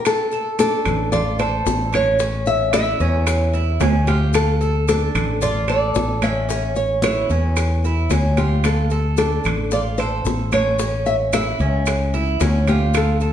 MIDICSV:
0, 0, Header, 1, 5, 480
1, 0, Start_track
1, 0, Key_signature, -1, "minor"
1, 0, Tempo, 537153
1, 49, Time_signature, 4, 2, 24, 8
1, 11910, End_track
2, 0, Start_track
2, 0, Title_t, "Nylon-string guitar"
2, 0, Program_c, 0, 24
2, 58, Note_on_c, 0, 69, 99
2, 499, Note_off_c, 0, 69, 0
2, 534, Note_on_c, 0, 69, 94
2, 997, Note_off_c, 0, 69, 0
2, 1001, Note_on_c, 0, 74, 94
2, 1226, Note_off_c, 0, 74, 0
2, 1246, Note_on_c, 0, 72, 102
2, 1737, Note_off_c, 0, 72, 0
2, 1741, Note_on_c, 0, 73, 100
2, 2205, Note_off_c, 0, 73, 0
2, 2208, Note_on_c, 0, 76, 97
2, 2431, Note_off_c, 0, 76, 0
2, 2441, Note_on_c, 0, 76, 99
2, 3228, Note_off_c, 0, 76, 0
2, 3228, Note_on_c, 0, 74, 99
2, 3605, Note_off_c, 0, 74, 0
2, 3640, Note_on_c, 0, 67, 92
2, 3882, Note_off_c, 0, 67, 0
2, 3886, Note_on_c, 0, 69, 95
2, 4330, Note_off_c, 0, 69, 0
2, 4366, Note_on_c, 0, 69, 89
2, 4845, Note_on_c, 0, 74, 89
2, 4858, Note_off_c, 0, 69, 0
2, 5078, Note_off_c, 0, 74, 0
2, 5089, Note_on_c, 0, 74, 93
2, 5531, Note_off_c, 0, 74, 0
2, 5573, Note_on_c, 0, 76, 96
2, 6014, Note_off_c, 0, 76, 0
2, 6043, Note_on_c, 0, 73, 90
2, 6275, Note_off_c, 0, 73, 0
2, 6285, Note_on_c, 0, 73, 93
2, 7489, Note_on_c, 0, 67, 82
2, 7520, Note_off_c, 0, 73, 0
2, 7731, Note_off_c, 0, 67, 0
2, 7734, Note_on_c, 0, 69, 94
2, 8175, Note_off_c, 0, 69, 0
2, 8207, Note_on_c, 0, 69, 80
2, 8694, Note_on_c, 0, 74, 91
2, 8699, Note_off_c, 0, 69, 0
2, 8758, Note_off_c, 0, 74, 0
2, 8918, Note_on_c, 0, 72, 97
2, 9410, Note_off_c, 0, 72, 0
2, 9413, Note_on_c, 0, 73, 95
2, 9883, Note_off_c, 0, 73, 0
2, 9886, Note_on_c, 0, 76, 90
2, 9951, Note_off_c, 0, 76, 0
2, 10130, Note_on_c, 0, 76, 96
2, 11292, Note_off_c, 0, 76, 0
2, 11341, Note_on_c, 0, 67, 83
2, 11557, Note_off_c, 0, 67, 0
2, 11589, Note_on_c, 0, 69, 88
2, 11910, Note_off_c, 0, 69, 0
2, 11910, End_track
3, 0, Start_track
3, 0, Title_t, "Cuban tres"
3, 0, Program_c, 1, 25
3, 291, Note_on_c, 1, 69, 69
3, 522, Note_off_c, 1, 69, 0
3, 531, Note_on_c, 1, 62, 79
3, 994, Note_off_c, 1, 62, 0
3, 1007, Note_on_c, 1, 65, 73
3, 1239, Note_off_c, 1, 65, 0
3, 1245, Note_on_c, 1, 69, 80
3, 1710, Note_off_c, 1, 69, 0
3, 1720, Note_on_c, 1, 61, 78
3, 1951, Note_off_c, 1, 61, 0
3, 1962, Note_on_c, 1, 61, 80
3, 2428, Note_off_c, 1, 61, 0
3, 2441, Note_on_c, 1, 64, 73
3, 2675, Note_off_c, 1, 64, 0
3, 2685, Note_on_c, 1, 61, 85
3, 3149, Note_off_c, 1, 61, 0
3, 3159, Note_on_c, 1, 64, 79
3, 3393, Note_off_c, 1, 64, 0
3, 3401, Note_on_c, 1, 61, 88
3, 3634, Note_off_c, 1, 61, 0
3, 3640, Note_on_c, 1, 65, 74
3, 4106, Note_off_c, 1, 65, 0
3, 4117, Note_on_c, 1, 69, 75
3, 4352, Note_off_c, 1, 69, 0
3, 4362, Note_on_c, 1, 62, 82
3, 4827, Note_off_c, 1, 62, 0
3, 4839, Note_on_c, 1, 65, 80
3, 5073, Note_off_c, 1, 65, 0
3, 5074, Note_on_c, 1, 69, 78
3, 5543, Note_off_c, 1, 69, 0
3, 5557, Note_on_c, 1, 61, 86
3, 5786, Note_off_c, 1, 61, 0
3, 5797, Note_on_c, 1, 61, 83
3, 6265, Note_off_c, 1, 61, 0
3, 6280, Note_on_c, 1, 64, 72
3, 6513, Note_off_c, 1, 64, 0
3, 6529, Note_on_c, 1, 61, 90
3, 6991, Note_off_c, 1, 61, 0
3, 7013, Note_on_c, 1, 64, 72
3, 7240, Note_off_c, 1, 64, 0
3, 7245, Note_on_c, 1, 61, 79
3, 7476, Note_off_c, 1, 61, 0
3, 7482, Note_on_c, 1, 65, 71
3, 7948, Note_off_c, 1, 65, 0
3, 7966, Note_on_c, 1, 69, 70
3, 8197, Note_off_c, 1, 69, 0
3, 8201, Note_on_c, 1, 62, 79
3, 8668, Note_off_c, 1, 62, 0
3, 8691, Note_on_c, 1, 65, 72
3, 8920, Note_off_c, 1, 65, 0
3, 8923, Note_on_c, 1, 69, 73
3, 9389, Note_off_c, 1, 69, 0
3, 9405, Note_on_c, 1, 61, 89
3, 9633, Note_off_c, 1, 61, 0
3, 9644, Note_on_c, 1, 61, 80
3, 10110, Note_off_c, 1, 61, 0
3, 10121, Note_on_c, 1, 64, 70
3, 10356, Note_off_c, 1, 64, 0
3, 10369, Note_on_c, 1, 61, 84
3, 10833, Note_off_c, 1, 61, 0
3, 10846, Note_on_c, 1, 64, 85
3, 11078, Note_off_c, 1, 64, 0
3, 11082, Note_on_c, 1, 61, 87
3, 11316, Note_off_c, 1, 61, 0
3, 11327, Note_on_c, 1, 65, 76
3, 11792, Note_off_c, 1, 65, 0
3, 11809, Note_on_c, 1, 69, 71
3, 11910, Note_off_c, 1, 69, 0
3, 11910, End_track
4, 0, Start_track
4, 0, Title_t, "Fretless electric bass"
4, 0, Program_c, 2, 35
4, 767, Note_on_c, 2, 33, 91
4, 1450, Note_off_c, 2, 33, 0
4, 1485, Note_on_c, 2, 33, 92
4, 2623, Note_off_c, 2, 33, 0
4, 2681, Note_on_c, 2, 40, 89
4, 3365, Note_off_c, 2, 40, 0
4, 3396, Note_on_c, 2, 38, 89
4, 4538, Note_off_c, 2, 38, 0
4, 4600, Note_on_c, 2, 33, 88
4, 5284, Note_off_c, 2, 33, 0
4, 5325, Note_on_c, 2, 33, 88
4, 6463, Note_off_c, 2, 33, 0
4, 6521, Note_on_c, 2, 40, 95
4, 7206, Note_off_c, 2, 40, 0
4, 7235, Note_on_c, 2, 38, 85
4, 8379, Note_off_c, 2, 38, 0
4, 8442, Note_on_c, 2, 33, 86
4, 9127, Note_off_c, 2, 33, 0
4, 9159, Note_on_c, 2, 33, 97
4, 10302, Note_off_c, 2, 33, 0
4, 10364, Note_on_c, 2, 37, 95
4, 11049, Note_off_c, 2, 37, 0
4, 11087, Note_on_c, 2, 38, 97
4, 11910, Note_off_c, 2, 38, 0
4, 11910, End_track
5, 0, Start_track
5, 0, Title_t, "Drums"
5, 46, Note_on_c, 9, 65, 97
5, 47, Note_on_c, 9, 70, 69
5, 56, Note_on_c, 9, 75, 69
5, 58, Note_on_c, 9, 60, 72
5, 59, Note_on_c, 9, 63, 36
5, 136, Note_off_c, 9, 65, 0
5, 136, Note_off_c, 9, 70, 0
5, 145, Note_off_c, 9, 75, 0
5, 147, Note_off_c, 9, 60, 0
5, 148, Note_off_c, 9, 63, 0
5, 283, Note_on_c, 9, 70, 32
5, 294, Note_on_c, 9, 63, 39
5, 372, Note_off_c, 9, 70, 0
5, 383, Note_off_c, 9, 63, 0
5, 526, Note_on_c, 9, 65, 68
5, 527, Note_on_c, 9, 63, 92
5, 529, Note_on_c, 9, 70, 77
5, 535, Note_on_c, 9, 60, 61
5, 616, Note_off_c, 9, 65, 0
5, 617, Note_off_c, 9, 63, 0
5, 618, Note_off_c, 9, 70, 0
5, 624, Note_off_c, 9, 60, 0
5, 764, Note_on_c, 9, 65, 94
5, 768, Note_on_c, 9, 63, 34
5, 768, Note_on_c, 9, 64, 90
5, 773, Note_on_c, 9, 70, 23
5, 774, Note_on_c, 9, 75, 69
5, 853, Note_off_c, 9, 65, 0
5, 857, Note_off_c, 9, 63, 0
5, 857, Note_off_c, 9, 64, 0
5, 863, Note_off_c, 9, 70, 0
5, 863, Note_off_c, 9, 75, 0
5, 1004, Note_on_c, 9, 70, 74
5, 1009, Note_on_c, 9, 63, 33
5, 1009, Note_on_c, 9, 64, 71
5, 1011, Note_on_c, 9, 60, 69
5, 1094, Note_off_c, 9, 70, 0
5, 1099, Note_off_c, 9, 63, 0
5, 1099, Note_off_c, 9, 64, 0
5, 1100, Note_off_c, 9, 60, 0
5, 1240, Note_on_c, 9, 70, 29
5, 1248, Note_on_c, 9, 65, 68
5, 1257, Note_on_c, 9, 63, 32
5, 1330, Note_off_c, 9, 70, 0
5, 1338, Note_off_c, 9, 65, 0
5, 1346, Note_off_c, 9, 63, 0
5, 1488, Note_on_c, 9, 70, 73
5, 1489, Note_on_c, 9, 60, 67
5, 1489, Note_on_c, 9, 61, 88
5, 1495, Note_on_c, 9, 63, 31
5, 1577, Note_off_c, 9, 70, 0
5, 1579, Note_off_c, 9, 60, 0
5, 1579, Note_off_c, 9, 61, 0
5, 1584, Note_off_c, 9, 63, 0
5, 1725, Note_on_c, 9, 70, 31
5, 1731, Note_on_c, 9, 63, 78
5, 1732, Note_on_c, 9, 65, 90
5, 1734, Note_on_c, 9, 75, 70
5, 1814, Note_off_c, 9, 70, 0
5, 1820, Note_off_c, 9, 63, 0
5, 1821, Note_off_c, 9, 65, 0
5, 1824, Note_off_c, 9, 75, 0
5, 1961, Note_on_c, 9, 70, 74
5, 1967, Note_on_c, 9, 60, 69
5, 1969, Note_on_c, 9, 63, 30
5, 2050, Note_off_c, 9, 70, 0
5, 2056, Note_off_c, 9, 60, 0
5, 2059, Note_off_c, 9, 63, 0
5, 2199, Note_on_c, 9, 70, 33
5, 2207, Note_on_c, 9, 63, 36
5, 2212, Note_on_c, 9, 60, 32
5, 2288, Note_off_c, 9, 70, 0
5, 2296, Note_off_c, 9, 63, 0
5, 2301, Note_off_c, 9, 60, 0
5, 2439, Note_on_c, 9, 65, 104
5, 2443, Note_on_c, 9, 70, 74
5, 2444, Note_on_c, 9, 63, 90
5, 2447, Note_on_c, 9, 60, 65
5, 2447, Note_on_c, 9, 75, 73
5, 2529, Note_off_c, 9, 65, 0
5, 2532, Note_off_c, 9, 70, 0
5, 2534, Note_off_c, 9, 63, 0
5, 2536, Note_off_c, 9, 60, 0
5, 2536, Note_off_c, 9, 75, 0
5, 2681, Note_on_c, 9, 70, 24
5, 2691, Note_on_c, 9, 63, 34
5, 2770, Note_off_c, 9, 70, 0
5, 2780, Note_off_c, 9, 63, 0
5, 2920, Note_on_c, 9, 65, 104
5, 2921, Note_on_c, 9, 70, 70
5, 2924, Note_on_c, 9, 60, 68
5, 2927, Note_on_c, 9, 75, 62
5, 2936, Note_on_c, 9, 63, 34
5, 3009, Note_off_c, 9, 65, 0
5, 3011, Note_off_c, 9, 70, 0
5, 3013, Note_off_c, 9, 60, 0
5, 3016, Note_off_c, 9, 75, 0
5, 3025, Note_off_c, 9, 63, 0
5, 3165, Note_on_c, 9, 60, 33
5, 3165, Note_on_c, 9, 70, 27
5, 3174, Note_on_c, 9, 63, 31
5, 3254, Note_off_c, 9, 60, 0
5, 3254, Note_off_c, 9, 70, 0
5, 3263, Note_off_c, 9, 63, 0
5, 3398, Note_on_c, 9, 70, 70
5, 3402, Note_on_c, 9, 60, 68
5, 3402, Note_on_c, 9, 61, 82
5, 3406, Note_on_c, 9, 65, 73
5, 3406, Note_on_c, 9, 66, 70
5, 3488, Note_off_c, 9, 70, 0
5, 3491, Note_off_c, 9, 60, 0
5, 3491, Note_off_c, 9, 61, 0
5, 3495, Note_off_c, 9, 65, 0
5, 3495, Note_off_c, 9, 66, 0
5, 3638, Note_on_c, 9, 63, 78
5, 3639, Note_on_c, 9, 70, 31
5, 3647, Note_on_c, 9, 60, 37
5, 3647, Note_on_c, 9, 65, 67
5, 3728, Note_off_c, 9, 63, 0
5, 3729, Note_off_c, 9, 70, 0
5, 3736, Note_off_c, 9, 60, 0
5, 3736, Note_off_c, 9, 65, 0
5, 3875, Note_on_c, 9, 70, 67
5, 3883, Note_on_c, 9, 65, 92
5, 3886, Note_on_c, 9, 75, 68
5, 3889, Note_on_c, 9, 60, 69
5, 3964, Note_off_c, 9, 70, 0
5, 3972, Note_off_c, 9, 65, 0
5, 3976, Note_off_c, 9, 75, 0
5, 3979, Note_off_c, 9, 60, 0
5, 4122, Note_on_c, 9, 70, 32
5, 4133, Note_on_c, 9, 63, 38
5, 4211, Note_off_c, 9, 70, 0
5, 4222, Note_off_c, 9, 63, 0
5, 4363, Note_on_c, 9, 70, 73
5, 4366, Note_on_c, 9, 65, 69
5, 4371, Note_on_c, 9, 60, 60
5, 4373, Note_on_c, 9, 63, 90
5, 4452, Note_off_c, 9, 70, 0
5, 4455, Note_off_c, 9, 65, 0
5, 4460, Note_off_c, 9, 60, 0
5, 4462, Note_off_c, 9, 63, 0
5, 4603, Note_on_c, 9, 75, 73
5, 4604, Note_on_c, 9, 70, 26
5, 4606, Note_on_c, 9, 65, 99
5, 4607, Note_on_c, 9, 63, 34
5, 4607, Note_on_c, 9, 64, 85
5, 4692, Note_off_c, 9, 75, 0
5, 4694, Note_off_c, 9, 70, 0
5, 4695, Note_off_c, 9, 65, 0
5, 4696, Note_off_c, 9, 63, 0
5, 4696, Note_off_c, 9, 64, 0
5, 4839, Note_on_c, 9, 70, 69
5, 4850, Note_on_c, 9, 63, 35
5, 4850, Note_on_c, 9, 64, 76
5, 4852, Note_on_c, 9, 60, 56
5, 4929, Note_off_c, 9, 70, 0
5, 4939, Note_off_c, 9, 63, 0
5, 4939, Note_off_c, 9, 64, 0
5, 4941, Note_off_c, 9, 60, 0
5, 5077, Note_on_c, 9, 65, 73
5, 5077, Note_on_c, 9, 70, 25
5, 5085, Note_on_c, 9, 63, 31
5, 5166, Note_off_c, 9, 65, 0
5, 5167, Note_off_c, 9, 70, 0
5, 5174, Note_off_c, 9, 63, 0
5, 5316, Note_on_c, 9, 70, 74
5, 5323, Note_on_c, 9, 63, 35
5, 5326, Note_on_c, 9, 60, 73
5, 5326, Note_on_c, 9, 61, 82
5, 5406, Note_off_c, 9, 70, 0
5, 5413, Note_off_c, 9, 63, 0
5, 5415, Note_off_c, 9, 60, 0
5, 5415, Note_off_c, 9, 61, 0
5, 5559, Note_on_c, 9, 65, 90
5, 5560, Note_on_c, 9, 63, 82
5, 5561, Note_on_c, 9, 70, 28
5, 5562, Note_on_c, 9, 75, 67
5, 5649, Note_off_c, 9, 65, 0
5, 5650, Note_off_c, 9, 63, 0
5, 5650, Note_off_c, 9, 70, 0
5, 5652, Note_off_c, 9, 75, 0
5, 5795, Note_on_c, 9, 63, 36
5, 5804, Note_on_c, 9, 70, 72
5, 5812, Note_on_c, 9, 60, 69
5, 5884, Note_off_c, 9, 63, 0
5, 5894, Note_off_c, 9, 70, 0
5, 5902, Note_off_c, 9, 60, 0
5, 6031, Note_on_c, 9, 63, 36
5, 6039, Note_on_c, 9, 70, 33
5, 6046, Note_on_c, 9, 60, 32
5, 6120, Note_off_c, 9, 63, 0
5, 6128, Note_off_c, 9, 70, 0
5, 6136, Note_off_c, 9, 60, 0
5, 6275, Note_on_c, 9, 63, 102
5, 6282, Note_on_c, 9, 70, 77
5, 6288, Note_on_c, 9, 65, 103
5, 6288, Note_on_c, 9, 75, 75
5, 6291, Note_on_c, 9, 60, 62
5, 6364, Note_off_c, 9, 63, 0
5, 6371, Note_off_c, 9, 70, 0
5, 6377, Note_off_c, 9, 65, 0
5, 6377, Note_off_c, 9, 75, 0
5, 6380, Note_off_c, 9, 60, 0
5, 6517, Note_on_c, 9, 63, 33
5, 6521, Note_on_c, 9, 70, 24
5, 6607, Note_off_c, 9, 63, 0
5, 6611, Note_off_c, 9, 70, 0
5, 6759, Note_on_c, 9, 63, 35
5, 6761, Note_on_c, 9, 65, 90
5, 6761, Note_on_c, 9, 70, 74
5, 6764, Note_on_c, 9, 75, 66
5, 6765, Note_on_c, 9, 60, 59
5, 6848, Note_off_c, 9, 63, 0
5, 6850, Note_off_c, 9, 70, 0
5, 6851, Note_off_c, 9, 65, 0
5, 6853, Note_off_c, 9, 75, 0
5, 6854, Note_off_c, 9, 60, 0
5, 6994, Note_on_c, 9, 63, 33
5, 7009, Note_on_c, 9, 60, 31
5, 7011, Note_on_c, 9, 70, 30
5, 7083, Note_off_c, 9, 63, 0
5, 7098, Note_off_c, 9, 60, 0
5, 7100, Note_off_c, 9, 70, 0
5, 7234, Note_on_c, 9, 63, 34
5, 7240, Note_on_c, 9, 70, 65
5, 7245, Note_on_c, 9, 60, 65
5, 7245, Note_on_c, 9, 61, 80
5, 7245, Note_on_c, 9, 65, 73
5, 7324, Note_off_c, 9, 63, 0
5, 7330, Note_off_c, 9, 70, 0
5, 7334, Note_off_c, 9, 60, 0
5, 7334, Note_off_c, 9, 61, 0
5, 7335, Note_off_c, 9, 65, 0
5, 7481, Note_on_c, 9, 63, 85
5, 7482, Note_on_c, 9, 65, 71
5, 7485, Note_on_c, 9, 60, 34
5, 7488, Note_on_c, 9, 70, 28
5, 7570, Note_off_c, 9, 63, 0
5, 7571, Note_off_c, 9, 65, 0
5, 7574, Note_off_c, 9, 60, 0
5, 7578, Note_off_c, 9, 70, 0
5, 7720, Note_on_c, 9, 65, 94
5, 7722, Note_on_c, 9, 70, 71
5, 7726, Note_on_c, 9, 63, 29
5, 7728, Note_on_c, 9, 60, 69
5, 7728, Note_on_c, 9, 75, 63
5, 7809, Note_off_c, 9, 65, 0
5, 7811, Note_off_c, 9, 70, 0
5, 7815, Note_off_c, 9, 63, 0
5, 7818, Note_off_c, 9, 60, 0
5, 7818, Note_off_c, 9, 75, 0
5, 7956, Note_on_c, 9, 70, 31
5, 7965, Note_on_c, 9, 63, 36
5, 8045, Note_off_c, 9, 70, 0
5, 8054, Note_off_c, 9, 63, 0
5, 8195, Note_on_c, 9, 70, 73
5, 8202, Note_on_c, 9, 63, 86
5, 8204, Note_on_c, 9, 60, 62
5, 8208, Note_on_c, 9, 65, 70
5, 8285, Note_off_c, 9, 70, 0
5, 8292, Note_off_c, 9, 63, 0
5, 8294, Note_off_c, 9, 60, 0
5, 8298, Note_off_c, 9, 65, 0
5, 8438, Note_on_c, 9, 70, 27
5, 8447, Note_on_c, 9, 75, 68
5, 8450, Note_on_c, 9, 63, 36
5, 8450, Note_on_c, 9, 64, 83
5, 8456, Note_on_c, 9, 65, 97
5, 8527, Note_off_c, 9, 70, 0
5, 8536, Note_off_c, 9, 75, 0
5, 8539, Note_off_c, 9, 63, 0
5, 8539, Note_off_c, 9, 64, 0
5, 8546, Note_off_c, 9, 65, 0
5, 8678, Note_on_c, 9, 70, 69
5, 8684, Note_on_c, 9, 60, 61
5, 8686, Note_on_c, 9, 63, 32
5, 8767, Note_off_c, 9, 70, 0
5, 8774, Note_off_c, 9, 60, 0
5, 8775, Note_off_c, 9, 63, 0
5, 8916, Note_on_c, 9, 70, 27
5, 8920, Note_on_c, 9, 63, 32
5, 8934, Note_on_c, 9, 65, 62
5, 9005, Note_off_c, 9, 70, 0
5, 9009, Note_off_c, 9, 63, 0
5, 9023, Note_off_c, 9, 65, 0
5, 9161, Note_on_c, 9, 70, 77
5, 9166, Note_on_c, 9, 63, 36
5, 9174, Note_on_c, 9, 60, 64
5, 9174, Note_on_c, 9, 61, 76
5, 9251, Note_off_c, 9, 70, 0
5, 9256, Note_off_c, 9, 63, 0
5, 9263, Note_off_c, 9, 60, 0
5, 9263, Note_off_c, 9, 61, 0
5, 9399, Note_on_c, 9, 70, 31
5, 9402, Note_on_c, 9, 63, 77
5, 9405, Note_on_c, 9, 75, 66
5, 9408, Note_on_c, 9, 65, 95
5, 9488, Note_off_c, 9, 70, 0
5, 9491, Note_off_c, 9, 63, 0
5, 9494, Note_off_c, 9, 75, 0
5, 9497, Note_off_c, 9, 65, 0
5, 9641, Note_on_c, 9, 70, 67
5, 9647, Note_on_c, 9, 60, 76
5, 9649, Note_on_c, 9, 63, 34
5, 9731, Note_off_c, 9, 70, 0
5, 9737, Note_off_c, 9, 60, 0
5, 9739, Note_off_c, 9, 63, 0
5, 9884, Note_on_c, 9, 70, 32
5, 9889, Note_on_c, 9, 60, 35
5, 9891, Note_on_c, 9, 63, 36
5, 9973, Note_off_c, 9, 70, 0
5, 9978, Note_off_c, 9, 60, 0
5, 9980, Note_off_c, 9, 63, 0
5, 10121, Note_on_c, 9, 70, 75
5, 10127, Note_on_c, 9, 65, 91
5, 10129, Note_on_c, 9, 63, 96
5, 10129, Note_on_c, 9, 75, 68
5, 10135, Note_on_c, 9, 60, 63
5, 10211, Note_off_c, 9, 70, 0
5, 10216, Note_off_c, 9, 65, 0
5, 10218, Note_off_c, 9, 63, 0
5, 10218, Note_off_c, 9, 75, 0
5, 10224, Note_off_c, 9, 60, 0
5, 10362, Note_on_c, 9, 70, 23
5, 10367, Note_on_c, 9, 63, 37
5, 10451, Note_off_c, 9, 70, 0
5, 10456, Note_off_c, 9, 63, 0
5, 10600, Note_on_c, 9, 70, 66
5, 10607, Note_on_c, 9, 65, 88
5, 10608, Note_on_c, 9, 63, 34
5, 10610, Note_on_c, 9, 75, 64
5, 10613, Note_on_c, 9, 60, 68
5, 10689, Note_off_c, 9, 70, 0
5, 10697, Note_off_c, 9, 63, 0
5, 10697, Note_off_c, 9, 65, 0
5, 10699, Note_off_c, 9, 75, 0
5, 10703, Note_off_c, 9, 60, 0
5, 10848, Note_on_c, 9, 70, 27
5, 10852, Note_on_c, 9, 60, 34
5, 10854, Note_on_c, 9, 63, 32
5, 10937, Note_off_c, 9, 70, 0
5, 10941, Note_off_c, 9, 60, 0
5, 10943, Note_off_c, 9, 63, 0
5, 11084, Note_on_c, 9, 70, 72
5, 11089, Note_on_c, 9, 60, 66
5, 11089, Note_on_c, 9, 61, 79
5, 11091, Note_on_c, 9, 65, 67
5, 11093, Note_on_c, 9, 63, 36
5, 11174, Note_off_c, 9, 70, 0
5, 11179, Note_off_c, 9, 60, 0
5, 11179, Note_off_c, 9, 61, 0
5, 11180, Note_off_c, 9, 65, 0
5, 11182, Note_off_c, 9, 63, 0
5, 11326, Note_on_c, 9, 65, 71
5, 11326, Note_on_c, 9, 70, 27
5, 11328, Note_on_c, 9, 60, 33
5, 11333, Note_on_c, 9, 63, 82
5, 11415, Note_off_c, 9, 70, 0
5, 11416, Note_off_c, 9, 65, 0
5, 11418, Note_off_c, 9, 60, 0
5, 11423, Note_off_c, 9, 63, 0
5, 11562, Note_on_c, 9, 70, 72
5, 11568, Note_on_c, 9, 60, 70
5, 11571, Note_on_c, 9, 65, 104
5, 11571, Note_on_c, 9, 75, 69
5, 11573, Note_on_c, 9, 63, 33
5, 11651, Note_off_c, 9, 70, 0
5, 11657, Note_off_c, 9, 60, 0
5, 11660, Note_off_c, 9, 65, 0
5, 11661, Note_off_c, 9, 75, 0
5, 11662, Note_off_c, 9, 63, 0
5, 11801, Note_on_c, 9, 70, 31
5, 11813, Note_on_c, 9, 63, 38
5, 11890, Note_off_c, 9, 70, 0
5, 11902, Note_off_c, 9, 63, 0
5, 11910, End_track
0, 0, End_of_file